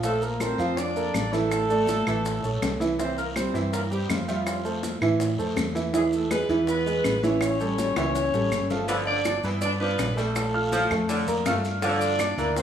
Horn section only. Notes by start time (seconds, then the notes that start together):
0.04 A3 A4
0.22 A#3 A#4
0.41 C4 C5
0.78 D4 D5
1.33 A3 A4
2.99 C4 C5
3.18 A#3 A#4
3.37 C4 C5
3.74 A#3 A#4
3.91 G3 G4
4.10 F3 F4
4.29 F3 F4
5.95 G#3 G#4
6.14 A3 A4
6.32 B3 B4
6.69 B3 B4
7.24 C#4 C#5
8.70 A3 A4
8.88 B3 B4
9.06 D4 D5
9.61 D4 D5
9.80 B3 B4
10.16 A3 A4
11.84 D4 D5
12.57 C4 C5